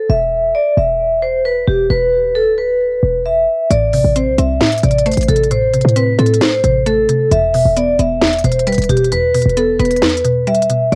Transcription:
0.10 0.53 E1 loud
0.10 0.52 E5 loud
0.55 0.72 D5 medium
0.77 1.64 E1 loud
0.77 1.20 E5 medium
1.22 1.40 C5 medium
1.45 1.63 B4 medium
1.67 1.89 E1 loud
1.67 1.85 G4 medium
1.90 2.48 E1 loud
1.90 2.32 B4 loud
2.35 2.53 A4 medium
2.46 3.00 D1 loud
2.58 3.21 B4 medium
3.03 3.46 E1 loud
3.26 3.68 E5 medium
3.70 4.03 A1 loud
3.70 4.60 A2 medium
3.70 4.13 D5 loud
3.70 closed hi-hat medium
3.93 4.82 C3 medium
3.93 open hi-hat medium
4.04 4.28 A1 loud
4.16 4.37 C4 medium
4.16 4.33 C5 medium
4.16 closed hi-hat medium
4.27 4.38 B1 loud
4.38 4.60 C2 loud
4.38 5.51 C4 loud
4.38 4.81 E5 medium
4.38 closed hi-hat medium
4.61 5.50 A2 medium
4.61 snare loud
4.61 closed hi-hat soft
4.66 closed hi-hat medium
4.72 closed hi-hat medium
4.78 closed hi-hat medium
4.83 5.16 A1 loud
4.83 5.27 C3 medium
4.83 5.01 D5 medium
4.83 closed hi-hat medium
4.91 closed hi-hat medium
4.98 closed hi-hat medium
5.06 6.19 A3 loud
5.06 5.24 C5 medium
5.06 closed hi-hat medium
5.11 closed hi-hat medium
5.13 closed hi-hat medium
5.17 5.28 A1 loud
5.17 closed hi-hat medium
5.21 closed hi-hat soft
5.23 closed hi-hat medium
5.28 5.83 A1 loud
5.28 5.72 C3 medium
5.28 5.46 A4 medium
5.28 closed hi-hat medium
5.36 closed hi-hat medium
5.43 closed hi-hat soft
5.51 6.40 A2 medium
5.51 5.93 C5 medium
5.51 closed hi-hat medium
5.74 6.63 C3 medium
5.74 closed hi-hat medium
5.81 6.17 A2 loud
5.81 closed hi-hat medium
5.89 closed hi-hat soft
5.96 6.17 C4 medium
5.96 6.14 B4 medium
5.96 closed hi-hat medium
6.19 6.62 A2 loud
6.19 7.31 C4 loud
6.19 6.36 A4 medium
6.19 closed hi-hat soft
6.26 closed hi-hat medium
6.34 closed hi-hat medium
6.41 7.31 A2 medium
6.41 6.59 C5 medium
6.41 snare loud
6.41 closed hi-hat medium
6.64 7.07 A1 loud
6.64 7.08 C3 medium
6.64 6.81 C5 medium
6.64 closed hi-hat medium
6.86 7.31 A3 loud
6.86 7.29 A4 medium
6.86 closed hi-hat medium
7.09 7.31 C3 medium
7.09 closed hi-hat medium
7.31 7.64 E1 loud
7.31 8.21 E2 medium
7.31 7.74 E5 loud
7.31 closed hi-hat medium
7.54 8.43 B2 medium
7.54 open hi-hat medium
7.65 7.98 E1 loud
7.76 7.98 B3 medium
7.76 7.94 D5 medium
7.76 closed hi-hat medium
7.99 8.42 E1 loud
7.99 9.12 B3 medium
7.99 8.42 E5 medium
7.99 closed hi-hat medium
8.21 9.11 E2 medium
8.21 snare loud
8.21 closed hi-hat soft
8.27 closed hi-hat medium
8.33 closed hi-hat medium
8.39 closed hi-hat medium
8.44 8.77 E1 loud
8.44 8.88 B2 medium
8.44 8.62 C5 medium
8.44 closed hi-hat medium
8.52 closed hi-hat medium
8.59 closed hi-hat medium
8.67 9.80 G3 loud
8.67 8.85 B4 medium
8.67 closed hi-hat medium
8.72 closed hi-hat medium
8.74 closed hi-hat medium
8.78 8.89 E1 loud
8.78 closed hi-hat medium
8.82 closed hi-hat soft
8.84 closed hi-hat medium
8.89 9.22 E1 loud
8.89 9.33 B2 medium
8.89 9.07 G4 medium
8.89 closed hi-hat medium
8.97 closed hi-hat medium
9.04 closed hi-hat soft
9.12 10.01 E2 medium
9.12 9.54 B4 loud
9.12 closed hi-hat medium
9.34 10.23 B2 medium
9.34 closed hi-hat medium
9.34 open hi-hat medium
9.42 9.78 E1 loud
9.42 closed hi-hat soft
9.49 closed hi-hat soft
9.57 9.78 B3 medium
9.57 9.75 A4 medium
9.57 closed hi-hat medium
9.79 10.01 E1 loud
9.79 10.92 B3 loud
9.79 10.43 B4 medium
9.79 closed hi-hat soft
9.85 closed hi-hat medium
9.91 closed hi-hat medium
9.96 closed hi-hat medium
10.02 10.92 E2 medium
10.02 snare loud
10.02 closed hi-hat soft
10.10 closed hi-hat medium
10.17 closed hi-hat medium
10.25 10.69 B2 medium
10.25 closed hi-hat medium
10.47 10.92 G3 loud
10.47 10.90 E5 medium
10.47 closed hi-hat soft
10.55 closed hi-hat medium
10.62 closed hi-hat medium
10.70 10.92 B2 medium
10.70 closed hi-hat medium

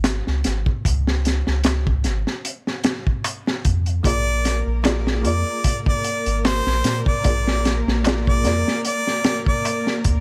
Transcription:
0.00 0.22 G#1 loud
0.00 snare loud
0.04 closed hi-hat medium
0.04 darbuka tek medium
0.27 0.43 C#2 medium
0.27 snare soft
0.44 0.65 G#1 medium
0.44 snare medium
0.44 closed hi-hat medium
0.66 kick medium
0.85 1.43 C#2 loud
0.85 kick loud
0.85 closed hi-hat medium
1.07 snare soft
1.25 snare soft
1.25 closed hi-hat medium
1.47 2.07 C#2 medium
1.47 snare soft
1.64 snare loud
1.64 closed hi-hat medium
1.64 darbuka tek medium
1.87 kick medium
2.04 2.24 G#1 loud
2.04 snare soft
2.04 closed hi-hat medium
2.27 snare soft
2.45 closed hi-hat medium
2.67 snare soft
2.84 snare loud
2.84 closed hi-hat medium
3.07 kick medium
3.24 closed hi-hat medium
3.24 darbuka tek medium
3.47 snare medium
3.65 4.01 F2 medium
3.65 kick loud
3.65 closed hi-hat medium
3.86 closed hi-hat soft
4.03 4.63 A#1 loud
4.03 4.23 A#3 medium
4.03 10.20 A#3 medium
4.03 4.23 F4 medium
4.03 4.24 G#4 medium
4.03 10.20 A#4 medium
4.03 4.61 D5 loud
4.03 4.25 D5 loud
4.03 kick loud
4.03 closed hi-hat medium
4.45 snare soft
4.45 closed hi-hat medium
4.66 5.26 A#1 medium
4.83 5.20 A#3 medium
4.83 5.20 F4 medium
4.83 5.21 G#4 medium
4.83 5.21 D5 medium
4.83 snare loud
4.83 closed hi-hat medium
4.83 darbuka tek medium
5.07 snare medium
5.22 5.44 F2 loud
5.22 7.19 A#3 medium
5.22 7.20 F4 medium
5.22 7.21 G#4 medium
5.22 closed hi-hat medium
5.26 5.81 D5 medium
5.26 7.22 D5 medium
5.64 kick medium
5.64 closed hi-hat medium
5.86 6.40 D5 medium
5.86 kick loud
6.04 closed hi-hat medium
6.26 6.61 G#1 loud
6.26 closed hi-hat soft
6.45 7.01 C5 medium
6.45 snare loud
6.45 closed hi-hat medium
6.45 darbuka tek medium
6.66 6.82 A#1 medium
6.66 snare soft
6.84 7.04 A#2 medium
6.84 snare medium
6.84 closed hi-hat medium
7.06 7.79 D5 medium
7.06 kick medium
7.23 7.83 A#1 loud
7.23 8.00 A#3 medium
7.23 8.00 F4 medium
7.23 8.01 G#4 medium
7.23 8.01 D5 medium
7.23 kick loud
7.23 closed hi-hat medium
7.47 snare soft
7.65 snare medium
7.65 closed hi-hat medium
7.87 8.46 A#1 medium
7.87 snare soft
8.03 8.40 A#3 medium
8.03 8.40 F4 medium
8.03 8.41 G#4 medium
8.03 8.41 D5 medium
8.03 snare loud
8.03 closed hi-hat medium
8.03 darbuka tek medium
8.27 8.80 D5 medium
8.27 kick medium
8.44 8.64 F2 loud
8.44 8.63 A#3 medium
8.44 8.63 F4 medium
8.44 8.64 G#4 medium
8.44 8.65 D5 medium
8.44 snare soft
8.44 closed hi-hat medium
8.68 snare soft
8.85 9.41 D5 loud
8.85 closed hi-hat medium
9.07 snare soft
9.24 snare loud
9.24 closed hi-hat medium
9.46 10.00 D5 medium
9.46 kick loud
9.65 closed hi-hat medium
9.65 darbuka tek medium
9.87 snare soft
10.04 10.20 D2 medium
10.04 kick loud
10.04 closed hi-hat medium

